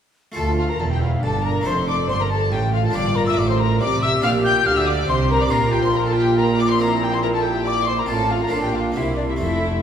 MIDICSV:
0, 0, Header, 1, 8, 480
1, 0, Start_track
1, 0, Tempo, 429185
1, 410, Time_signature, 3, 2, 24, 8
1, 8567, Tempo, 436047
1, 10946, End_track
2, 0, Start_track
2, 0, Title_t, "Flute"
2, 0, Program_c, 0, 73
2, 417, Note_on_c, 0, 81, 93
2, 640, Note_off_c, 0, 81, 0
2, 652, Note_on_c, 0, 77, 80
2, 761, Note_off_c, 0, 77, 0
2, 768, Note_on_c, 0, 82, 79
2, 887, Note_off_c, 0, 82, 0
2, 893, Note_on_c, 0, 81, 83
2, 949, Note_off_c, 0, 81, 0
2, 1013, Note_on_c, 0, 79, 73
2, 1069, Note_off_c, 0, 79, 0
2, 1146, Note_on_c, 0, 77, 81
2, 1385, Note_on_c, 0, 81, 96
2, 1401, Note_off_c, 0, 77, 0
2, 1631, Note_on_c, 0, 82, 89
2, 1648, Note_off_c, 0, 81, 0
2, 1867, Note_on_c, 0, 84, 97
2, 1884, Note_off_c, 0, 82, 0
2, 2092, Note_off_c, 0, 84, 0
2, 2098, Note_on_c, 0, 86, 88
2, 2333, Note_off_c, 0, 86, 0
2, 2340, Note_on_c, 0, 84, 99
2, 2395, Note_off_c, 0, 84, 0
2, 2465, Note_on_c, 0, 82, 78
2, 2575, Note_off_c, 0, 82, 0
2, 2582, Note_on_c, 0, 81, 77
2, 2649, Note_off_c, 0, 81, 0
2, 2809, Note_on_c, 0, 79, 93
2, 3054, Note_on_c, 0, 77, 83
2, 3070, Note_off_c, 0, 79, 0
2, 3166, Note_off_c, 0, 77, 0
2, 3173, Note_on_c, 0, 81, 83
2, 3296, Note_on_c, 0, 86, 97
2, 3312, Note_off_c, 0, 81, 0
2, 3529, Note_on_c, 0, 82, 94
2, 3546, Note_off_c, 0, 86, 0
2, 3658, Note_on_c, 0, 88, 94
2, 3675, Note_off_c, 0, 82, 0
2, 3787, Note_on_c, 0, 86, 91
2, 3803, Note_off_c, 0, 88, 0
2, 3906, Note_off_c, 0, 86, 0
2, 3911, Note_on_c, 0, 84, 82
2, 4029, Note_on_c, 0, 82, 89
2, 4046, Note_off_c, 0, 84, 0
2, 4252, Note_off_c, 0, 82, 0
2, 4259, Note_on_c, 0, 86, 106
2, 4504, Note_on_c, 0, 88, 100
2, 4520, Note_off_c, 0, 86, 0
2, 4724, Note_off_c, 0, 88, 0
2, 4730, Note_on_c, 0, 89, 113
2, 4797, Note_off_c, 0, 89, 0
2, 4971, Note_on_c, 0, 91, 109
2, 5215, Note_on_c, 0, 89, 120
2, 5232, Note_off_c, 0, 91, 0
2, 5335, Note_on_c, 0, 88, 84
2, 5352, Note_off_c, 0, 89, 0
2, 5438, Note_off_c, 0, 88, 0
2, 5445, Note_on_c, 0, 86, 95
2, 5512, Note_off_c, 0, 86, 0
2, 5697, Note_on_c, 0, 84, 114
2, 5764, Note_off_c, 0, 84, 0
2, 5933, Note_on_c, 0, 82, 104
2, 6044, Note_off_c, 0, 82, 0
2, 6050, Note_on_c, 0, 86, 96
2, 6164, Note_on_c, 0, 82, 112
2, 6181, Note_off_c, 0, 86, 0
2, 6405, Note_off_c, 0, 82, 0
2, 6412, Note_on_c, 0, 79, 105
2, 6466, Note_off_c, 0, 79, 0
2, 6540, Note_on_c, 0, 84, 91
2, 6661, Note_on_c, 0, 82, 96
2, 6677, Note_off_c, 0, 84, 0
2, 6777, Note_off_c, 0, 82, 0
2, 6792, Note_on_c, 0, 81, 81
2, 6900, Note_off_c, 0, 81, 0
2, 6905, Note_on_c, 0, 79, 96
2, 7133, Note_off_c, 0, 79, 0
2, 7147, Note_on_c, 0, 82, 111
2, 7374, Note_off_c, 0, 82, 0
2, 7390, Note_on_c, 0, 86, 101
2, 7498, Note_off_c, 0, 86, 0
2, 7513, Note_on_c, 0, 84, 97
2, 7619, Note_off_c, 0, 84, 0
2, 7631, Note_on_c, 0, 82, 107
2, 7855, Note_off_c, 0, 82, 0
2, 7868, Note_on_c, 0, 79, 95
2, 7989, Note_on_c, 0, 84, 89
2, 8006, Note_off_c, 0, 79, 0
2, 8099, Note_off_c, 0, 84, 0
2, 8107, Note_on_c, 0, 82, 102
2, 8215, Note_off_c, 0, 82, 0
2, 8229, Note_on_c, 0, 81, 85
2, 8344, Note_on_c, 0, 79, 98
2, 8361, Note_off_c, 0, 81, 0
2, 8580, Note_on_c, 0, 86, 122
2, 8596, Note_off_c, 0, 79, 0
2, 8803, Note_on_c, 0, 84, 99
2, 8820, Note_off_c, 0, 86, 0
2, 8933, Note_on_c, 0, 82, 85
2, 8949, Note_off_c, 0, 84, 0
2, 9046, Note_on_c, 0, 81, 103
2, 9063, Note_off_c, 0, 82, 0
2, 9284, Note_on_c, 0, 77, 91
2, 9301, Note_off_c, 0, 81, 0
2, 9408, Note_on_c, 0, 82, 89
2, 9424, Note_off_c, 0, 77, 0
2, 9510, Note_on_c, 0, 81, 82
2, 9526, Note_off_c, 0, 82, 0
2, 9630, Note_on_c, 0, 79, 81
2, 9646, Note_off_c, 0, 81, 0
2, 9761, Note_on_c, 0, 77, 86
2, 9778, Note_off_c, 0, 79, 0
2, 9992, Note_on_c, 0, 78, 83
2, 10008, Note_off_c, 0, 77, 0
2, 10034, Note_on_c, 0, 76, 90
2, 10045, Note_off_c, 0, 78, 0
2, 10227, Note_on_c, 0, 74, 79
2, 10244, Note_off_c, 0, 76, 0
2, 10348, Note_off_c, 0, 74, 0
2, 10355, Note_on_c, 0, 76, 83
2, 10471, Note_off_c, 0, 76, 0
2, 10478, Note_on_c, 0, 76, 98
2, 10746, Note_off_c, 0, 76, 0
2, 10946, End_track
3, 0, Start_track
3, 0, Title_t, "Violin section"
3, 0, Program_c, 1, 48
3, 403, Note_on_c, 1, 81, 86
3, 493, Note_off_c, 1, 81, 0
3, 644, Note_on_c, 1, 77, 99
3, 767, Note_off_c, 1, 77, 0
3, 770, Note_on_c, 1, 82, 93
3, 878, Note_on_c, 1, 81, 87
3, 891, Note_off_c, 1, 82, 0
3, 1009, Note_off_c, 1, 81, 0
3, 1015, Note_on_c, 1, 79, 89
3, 1135, Note_off_c, 1, 79, 0
3, 1135, Note_on_c, 1, 77, 82
3, 1224, Note_off_c, 1, 77, 0
3, 1375, Note_on_c, 1, 81, 98
3, 1612, Note_off_c, 1, 81, 0
3, 1623, Note_on_c, 1, 82, 99
3, 1862, Note_off_c, 1, 82, 0
3, 1866, Note_on_c, 1, 84, 95
3, 2099, Note_off_c, 1, 84, 0
3, 2102, Note_on_c, 1, 86, 111
3, 2192, Note_off_c, 1, 86, 0
3, 2354, Note_on_c, 1, 84, 106
3, 2466, Note_off_c, 1, 84, 0
3, 2476, Note_on_c, 1, 82, 95
3, 2590, Note_off_c, 1, 82, 0
3, 2590, Note_on_c, 1, 81, 98
3, 2823, Note_off_c, 1, 81, 0
3, 2842, Note_on_c, 1, 79, 96
3, 3060, Note_on_c, 1, 77, 98
3, 3073, Note_off_c, 1, 79, 0
3, 3179, Note_off_c, 1, 77, 0
3, 3192, Note_on_c, 1, 81, 97
3, 3306, Note_off_c, 1, 81, 0
3, 3307, Note_on_c, 1, 86, 95
3, 3545, Note_off_c, 1, 86, 0
3, 3547, Note_on_c, 1, 82, 118
3, 3594, Note_off_c, 1, 82, 0
3, 3653, Note_on_c, 1, 88, 106
3, 3766, Note_on_c, 1, 86, 98
3, 3776, Note_off_c, 1, 88, 0
3, 3895, Note_off_c, 1, 86, 0
3, 3897, Note_on_c, 1, 84, 96
3, 4021, Note_off_c, 1, 84, 0
3, 4027, Note_on_c, 1, 82, 94
3, 4260, Note_on_c, 1, 86, 113
3, 4262, Note_off_c, 1, 82, 0
3, 4498, Note_off_c, 1, 86, 0
3, 4511, Note_on_c, 1, 88, 115
3, 4741, Note_on_c, 1, 89, 95
3, 4743, Note_off_c, 1, 88, 0
3, 4830, Note_off_c, 1, 89, 0
3, 4985, Note_on_c, 1, 91, 127
3, 5217, Note_on_c, 1, 89, 117
3, 5218, Note_off_c, 1, 91, 0
3, 5336, Note_off_c, 1, 89, 0
3, 5345, Note_on_c, 1, 88, 110
3, 5452, Note_on_c, 1, 86, 106
3, 5462, Note_off_c, 1, 88, 0
3, 5694, Note_off_c, 1, 86, 0
3, 5694, Note_on_c, 1, 84, 110
3, 5934, Note_off_c, 1, 84, 0
3, 5959, Note_on_c, 1, 82, 114
3, 6064, Note_off_c, 1, 82, 0
3, 6066, Note_on_c, 1, 86, 106
3, 6180, Note_off_c, 1, 86, 0
3, 6184, Note_on_c, 1, 82, 105
3, 6418, Note_off_c, 1, 82, 0
3, 6432, Note_on_c, 1, 79, 119
3, 6539, Note_on_c, 1, 84, 114
3, 6542, Note_off_c, 1, 79, 0
3, 6656, Note_off_c, 1, 84, 0
3, 6660, Note_on_c, 1, 82, 101
3, 6776, Note_off_c, 1, 82, 0
3, 6779, Note_on_c, 1, 81, 104
3, 6891, Note_on_c, 1, 79, 111
3, 6893, Note_off_c, 1, 81, 0
3, 7128, Note_on_c, 1, 82, 114
3, 7131, Note_off_c, 1, 79, 0
3, 7364, Note_off_c, 1, 82, 0
3, 7377, Note_on_c, 1, 86, 125
3, 7493, Note_off_c, 1, 86, 0
3, 7496, Note_on_c, 1, 84, 110
3, 7610, Note_on_c, 1, 82, 108
3, 7612, Note_off_c, 1, 84, 0
3, 7849, Note_off_c, 1, 82, 0
3, 7853, Note_on_c, 1, 79, 124
3, 7971, Note_off_c, 1, 79, 0
3, 7971, Note_on_c, 1, 84, 105
3, 8081, Note_on_c, 1, 82, 114
3, 8089, Note_off_c, 1, 84, 0
3, 8130, Note_off_c, 1, 82, 0
3, 8213, Note_on_c, 1, 81, 97
3, 8320, Note_on_c, 1, 79, 108
3, 8328, Note_off_c, 1, 81, 0
3, 8554, Note_on_c, 1, 86, 107
3, 8565, Note_off_c, 1, 79, 0
3, 8791, Note_on_c, 1, 84, 97
3, 8794, Note_off_c, 1, 86, 0
3, 8908, Note_on_c, 1, 82, 109
3, 8917, Note_off_c, 1, 84, 0
3, 9032, Note_on_c, 1, 81, 102
3, 9035, Note_off_c, 1, 82, 0
3, 9268, Note_on_c, 1, 77, 102
3, 9270, Note_off_c, 1, 81, 0
3, 9393, Note_off_c, 1, 77, 0
3, 9401, Note_on_c, 1, 82, 96
3, 9509, Note_on_c, 1, 81, 98
3, 9520, Note_off_c, 1, 82, 0
3, 9634, Note_off_c, 1, 81, 0
3, 9636, Note_on_c, 1, 79, 96
3, 9749, Note_on_c, 1, 77, 89
3, 9755, Note_off_c, 1, 79, 0
3, 9837, Note_off_c, 1, 77, 0
3, 9992, Note_on_c, 1, 76, 92
3, 10080, Note_off_c, 1, 76, 0
3, 10229, Note_on_c, 1, 74, 87
3, 10279, Note_off_c, 1, 74, 0
3, 10366, Note_on_c, 1, 76, 84
3, 10413, Note_off_c, 1, 76, 0
3, 10481, Note_on_c, 1, 76, 82
3, 10946, Note_off_c, 1, 76, 0
3, 10946, End_track
4, 0, Start_track
4, 0, Title_t, "Violin section"
4, 0, Program_c, 2, 48
4, 414, Note_on_c, 2, 69, 101
4, 638, Note_off_c, 2, 69, 0
4, 660, Note_on_c, 2, 65, 69
4, 775, Note_off_c, 2, 65, 0
4, 782, Note_on_c, 2, 70, 86
4, 899, Note_on_c, 2, 69, 74
4, 900, Note_off_c, 2, 70, 0
4, 947, Note_off_c, 2, 69, 0
4, 1019, Note_on_c, 2, 67, 79
4, 1137, Note_off_c, 2, 67, 0
4, 1141, Note_on_c, 2, 65, 79
4, 1231, Note_off_c, 2, 65, 0
4, 1375, Note_on_c, 2, 69, 93
4, 1611, Note_on_c, 2, 70, 94
4, 1612, Note_off_c, 2, 69, 0
4, 1851, Note_off_c, 2, 70, 0
4, 1853, Note_on_c, 2, 72, 95
4, 1942, Note_off_c, 2, 72, 0
4, 2094, Note_on_c, 2, 74, 88
4, 2334, Note_off_c, 2, 74, 0
4, 2343, Note_on_c, 2, 72, 82
4, 2463, Note_off_c, 2, 72, 0
4, 2471, Note_on_c, 2, 70, 79
4, 2572, Note_on_c, 2, 69, 88
4, 2588, Note_off_c, 2, 70, 0
4, 2814, Note_off_c, 2, 69, 0
4, 2825, Note_on_c, 2, 67, 87
4, 2915, Note_off_c, 2, 67, 0
4, 3064, Note_on_c, 2, 65, 86
4, 3182, Note_off_c, 2, 65, 0
4, 3191, Note_on_c, 2, 69, 79
4, 3237, Note_off_c, 2, 69, 0
4, 3306, Note_on_c, 2, 74, 106
4, 3540, Note_off_c, 2, 74, 0
4, 3550, Note_on_c, 2, 70, 88
4, 3667, Note_off_c, 2, 70, 0
4, 3671, Note_on_c, 2, 76, 96
4, 3785, Note_off_c, 2, 76, 0
4, 3791, Note_on_c, 2, 74, 87
4, 3901, Note_on_c, 2, 72, 86
4, 3908, Note_off_c, 2, 74, 0
4, 4021, Note_off_c, 2, 72, 0
4, 4026, Note_on_c, 2, 70, 95
4, 4266, Note_off_c, 2, 70, 0
4, 4272, Note_on_c, 2, 74, 103
4, 4509, Note_off_c, 2, 74, 0
4, 4510, Note_on_c, 2, 76, 104
4, 4600, Note_off_c, 2, 76, 0
4, 4739, Note_on_c, 2, 77, 125
4, 4829, Note_off_c, 2, 77, 0
4, 4977, Note_on_c, 2, 79, 99
4, 5214, Note_off_c, 2, 79, 0
4, 5216, Note_on_c, 2, 77, 103
4, 5338, Note_off_c, 2, 77, 0
4, 5342, Note_on_c, 2, 76, 93
4, 5450, Note_on_c, 2, 74, 105
4, 5458, Note_off_c, 2, 76, 0
4, 5693, Note_off_c, 2, 74, 0
4, 5700, Note_on_c, 2, 72, 107
4, 5937, Note_off_c, 2, 72, 0
4, 5938, Note_on_c, 2, 70, 106
4, 6049, Note_on_c, 2, 74, 88
4, 6056, Note_off_c, 2, 70, 0
4, 6167, Note_on_c, 2, 70, 114
4, 6171, Note_off_c, 2, 74, 0
4, 6401, Note_on_c, 2, 67, 93
4, 6409, Note_off_c, 2, 70, 0
4, 6522, Note_on_c, 2, 72, 101
4, 6524, Note_off_c, 2, 67, 0
4, 6626, Note_on_c, 2, 70, 96
4, 6645, Note_off_c, 2, 72, 0
4, 6757, Note_off_c, 2, 70, 0
4, 6764, Note_on_c, 2, 69, 95
4, 6885, Note_on_c, 2, 67, 106
4, 6888, Note_off_c, 2, 69, 0
4, 7121, Note_on_c, 2, 70, 102
4, 7123, Note_off_c, 2, 67, 0
4, 7210, Note_off_c, 2, 70, 0
4, 7358, Note_on_c, 2, 74, 93
4, 7478, Note_on_c, 2, 72, 86
4, 7481, Note_off_c, 2, 74, 0
4, 7604, Note_off_c, 2, 72, 0
4, 7610, Note_on_c, 2, 70, 112
4, 7700, Note_off_c, 2, 70, 0
4, 7857, Note_on_c, 2, 67, 83
4, 7904, Note_off_c, 2, 67, 0
4, 7969, Note_on_c, 2, 72, 102
4, 8017, Note_off_c, 2, 72, 0
4, 8090, Note_on_c, 2, 70, 102
4, 8138, Note_off_c, 2, 70, 0
4, 8215, Note_on_c, 2, 69, 84
4, 8328, Note_on_c, 2, 67, 101
4, 8329, Note_off_c, 2, 69, 0
4, 8568, Note_off_c, 2, 67, 0
4, 8580, Note_on_c, 2, 74, 119
4, 8811, Note_off_c, 2, 74, 0
4, 8817, Note_on_c, 2, 72, 82
4, 8928, Note_off_c, 2, 72, 0
4, 8938, Note_on_c, 2, 70, 85
4, 8983, Note_off_c, 2, 70, 0
4, 9055, Note_on_c, 2, 69, 106
4, 9282, Note_off_c, 2, 69, 0
4, 9288, Note_on_c, 2, 65, 81
4, 9404, Note_off_c, 2, 65, 0
4, 9412, Note_on_c, 2, 70, 93
4, 9522, Note_on_c, 2, 69, 82
4, 9525, Note_off_c, 2, 70, 0
4, 9640, Note_off_c, 2, 69, 0
4, 9644, Note_on_c, 2, 67, 87
4, 9759, Note_off_c, 2, 67, 0
4, 9764, Note_on_c, 2, 65, 88
4, 10001, Note_off_c, 2, 65, 0
4, 10007, Note_on_c, 2, 64, 82
4, 10239, Note_off_c, 2, 64, 0
4, 10240, Note_on_c, 2, 62, 78
4, 10361, Note_off_c, 2, 62, 0
4, 10366, Note_on_c, 2, 64, 68
4, 10479, Note_off_c, 2, 64, 0
4, 10492, Note_on_c, 2, 64, 102
4, 10946, Note_off_c, 2, 64, 0
4, 10946, End_track
5, 0, Start_track
5, 0, Title_t, "Viola section"
5, 0, Program_c, 3, 48
5, 402, Note_on_c, 3, 65, 67
5, 858, Note_off_c, 3, 65, 0
5, 902, Note_on_c, 3, 64, 71
5, 1380, Note_on_c, 3, 62, 73
5, 1383, Note_off_c, 3, 64, 0
5, 1854, Note_on_c, 3, 69, 70
5, 1860, Note_off_c, 3, 62, 0
5, 2802, Note_off_c, 3, 69, 0
5, 2824, Note_on_c, 3, 65, 79
5, 4250, Note_on_c, 3, 67, 95
5, 4265, Note_off_c, 3, 65, 0
5, 5681, Note_off_c, 3, 67, 0
5, 5694, Note_on_c, 3, 67, 84
5, 6162, Note_off_c, 3, 67, 0
5, 6190, Note_on_c, 3, 65, 97
5, 7573, Note_off_c, 3, 65, 0
5, 7618, Note_on_c, 3, 64, 84
5, 9019, Note_off_c, 3, 64, 0
5, 9044, Note_on_c, 3, 65, 79
5, 9510, Note_off_c, 3, 65, 0
5, 9520, Note_on_c, 3, 62, 85
5, 9999, Note_off_c, 3, 62, 0
5, 10007, Note_on_c, 3, 58, 75
5, 10473, Note_on_c, 3, 57, 75
5, 10487, Note_off_c, 3, 58, 0
5, 10946, Note_off_c, 3, 57, 0
5, 10946, End_track
6, 0, Start_track
6, 0, Title_t, "Harpsichord"
6, 0, Program_c, 4, 6
6, 355, Note_on_c, 4, 57, 53
6, 369, Note_on_c, 4, 65, 54
6, 385, Note_on_c, 4, 69, 56
6, 408, Note_on_c, 4, 38, 65
6, 850, Note_off_c, 4, 38, 0
6, 853, Note_off_c, 4, 57, 0
6, 892, Note_on_c, 4, 40, 68
6, 1334, Note_off_c, 4, 40, 0
6, 1378, Note_on_c, 4, 43, 63
6, 1795, Note_off_c, 4, 65, 0
6, 1804, Note_off_c, 4, 69, 0
6, 1804, Note_on_c, 4, 57, 57
6, 1814, Note_off_c, 4, 43, 0
6, 1820, Note_on_c, 4, 62, 57
6, 1839, Note_on_c, 4, 69, 58
6, 1855, Note_on_c, 4, 41, 58
6, 2295, Note_off_c, 4, 41, 0
6, 2299, Note_off_c, 4, 57, 0
6, 2343, Note_on_c, 4, 43, 70
6, 2780, Note_off_c, 4, 43, 0
6, 2817, Note_on_c, 4, 45, 69
6, 3240, Note_off_c, 4, 62, 0
6, 3246, Note_on_c, 4, 58, 55
6, 3250, Note_off_c, 4, 69, 0
6, 3255, Note_off_c, 4, 45, 0
6, 3259, Note_on_c, 4, 62, 56
6, 3279, Note_on_c, 4, 67, 61
6, 3294, Note_on_c, 4, 43, 63
6, 3735, Note_off_c, 4, 43, 0
6, 3740, Note_off_c, 4, 58, 0
6, 3747, Note_off_c, 4, 62, 0
6, 3788, Note_on_c, 4, 45, 69
6, 4223, Note_off_c, 4, 45, 0
6, 4261, Note_on_c, 4, 48, 74
6, 4689, Note_off_c, 4, 67, 0
6, 4698, Note_off_c, 4, 48, 0
6, 4709, Note_on_c, 4, 62, 65
6, 4723, Note_on_c, 4, 67, 61
6, 4743, Note_on_c, 4, 46, 71
6, 5176, Note_off_c, 4, 46, 0
6, 5211, Note_on_c, 4, 50, 77
6, 5648, Note_off_c, 4, 50, 0
6, 5694, Note_on_c, 4, 48, 73
6, 6113, Note_off_c, 4, 62, 0
6, 6119, Note_off_c, 4, 67, 0
6, 6127, Note_off_c, 4, 48, 0
6, 6134, Note_on_c, 4, 62, 70
6, 6149, Note_on_c, 4, 65, 66
6, 6170, Note_on_c, 4, 46, 74
6, 7546, Note_off_c, 4, 62, 0
6, 7554, Note_off_c, 4, 65, 0
6, 7583, Note_on_c, 4, 60, 65
6, 7598, Note_on_c, 4, 64, 66
6, 8987, Note_off_c, 4, 60, 0
6, 8995, Note_off_c, 4, 64, 0
6, 8997, Note_off_c, 4, 46, 0
6, 9008, Note_on_c, 4, 60, 60
6, 9026, Note_on_c, 4, 65, 59
6, 9051, Note_on_c, 4, 45, 72
6, 9463, Note_on_c, 4, 58, 64
6, 9477, Note_on_c, 4, 62, 66
6, 9479, Note_off_c, 4, 45, 0
6, 9481, Note_off_c, 4, 65, 0
6, 9487, Note_off_c, 4, 60, 0
6, 9495, Note_on_c, 4, 65, 64
6, 9511, Note_on_c, 4, 46, 73
6, 9938, Note_off_c, 4, 58, 0
6, 9950, Note_off_c, 4, 46, 0
6, 9951, Note_on_c, 4, 58, 60
6, 9962, Note_off_c, 4, 62, 0
6, 9969, Note_on_c, 4, 60, 60
6, 9971, Note_off_c, 4, 65, 0
6, 10000, Note_on_c, 4, 48, 64
6, 10439, Note_off_c, 4, 48, 0
6, 10441, Note_off_c, 4, 60, 0
6, 10442, Note_on_c, 4, 57, 51
6, 10444, Note_off_c, 4, 58, 0
6, 10454, Note_on_c, 4, 60, 49
6, 10492, Note_on_c, 4, 41, 59
6, 10946, Note_off_c, 4, 41, 0
6, 10946, Note_off_c, 4, 57, 0
6, 10946, Note_off_c, 4, 60, 0
6, 10946, End_track
7, 0, Start_track
7, 0, Title_t, "Cello section"
7, 0, Program_c, 5, 48
7, 408, Note_on_c, 5, 38, 84
7, 861, Note_off_c, 5, 38, 0
7, 897, Note_on_c, 5, 40, 82
7, 1371, Note_off_c, 5, 40, 0
7, 1379, Note_on_c, 5, 43, 82
7, 1850, Note_off_c, 5, 43, 0
7, 1858, Note_on_c, 5, 41, 85
7, 2331, Note_off_c, 5, 41, 0
7, 2342, Note_on_c, 5, 43, 79
7, 2820, Note_on_c, 5, 45, 89
7, 2824, Note_off_c, 5, 43, 0
7, 3296, Note_on_c, 5, 43, 100
7, 3301, Note_off_c, 5, 45, 0
7, 3771, Note_off_c, 5, 43, 0
7, 3777, Note_on_c, 5, 45, 91
7, 4252, Note_off_c, 5, 45, 0
7, 4253, Note_on_c, 5, 48, 84
7, 4735, Note_on_c, 5, 46, 97
7, 4739, Note_off_c, 5, 48, 0
7, 5207, Note_off_c, 5, 46, 0
7, 5214, Note_on_c, 5, 50, 93
7, 5684, Note_off_c, 5, 50, 0
7, 5689, Note_on_c, 5, 48, 96
7, 6160, Note_off_c, 5, 48, 0
7, 6166, Note_on_c, 5, 46, 103
7, 8995, Note_off_c, 5, 46, 0
7, 9043, Note_on_c, 5, 45, 95
7, 9510, Note_off_c, 5, 45, 0
7, 9515, Note_on_c, 5, 46, 85
7, 9987, Note_off_c, 5, 46, 0
7, 9997, Note_on_c, 5, 48, 76
7, 10482, Note_off_c, 5, 48, 0
7, 10482, Note_on_c, 5, 41, 84
7, 10946, Note_off_c, 5, 41, 0
7, 10946, End_track
8, 0, Start_track
8, 0, Title_t, "Double bass section"
8, 0, Program_c, 6, 48
8, 421, Note_on_c, 6, 38, 76
8, 868, Note_off_c, 6, 38, 0
8, 893, Note_on_c, 6, 28, 81
8, 1369, Note_off_c, 6, 28, 0
8, 1381, Note_on_c, 6, 31, 82
8, 1851, Note_off_c, 6, 31, 0
8, 1858, Note_on_c, 6, 29, 78
8, 2331, Note_off_c, 6, 29, 0
8, 2345, Note_on_c, 6, 31, 78
8, 2823, Note_on_c, 6, 33, 86
8, 2826, Note_off_c, 6, 31, 0
8, 3301, Note_on_c, 6, 31, 81
8, 3303, Note_off_c, 6, 33, 0
8, 3773, Note_off_c, 6, 31, 0
8, 3781, Note_on_c, 6, 33, 85
8, 4254, Note_off_c, 6, 33, 0
8, 4263, Note_on_c, 6, 36, 86
8, 4744, Note_off_c, 6, 36, 0
8, 4747, Note_on_c, 6, 34, 86
8, 5213, Note_off_c, 6, 34, 0
8, 5221, Note_on_c, 6, 38, 97
8, 5688, Note_off_c, 6, 38, 0
8, 5694, Note_on_c, 6, 36, 90
8, 6163, Note_off_c, 6, 36, 0
8, 6172, Note_on_c, 6, 34, 88
8, 8998, Note_off_c, 6, 34, 0
8, 9044, Note_on_c, 6, 33, 81
8, 9510, Note_off_c, 6, 33, 0
8, 9521, Note_on_c, 6, 34, 82
8, 9990, Note_off_c, 6, 34, 0
8, 9999, Note_on_c, 6, 36, 75
8, 10480, Note_on_c, 6, 29, 80
8, 10483, Note_off_c, 6, 36, 0
8, 10946, Note_off_c, 6, 29, 0
8, 10946, End_track
0, 0, End_of_file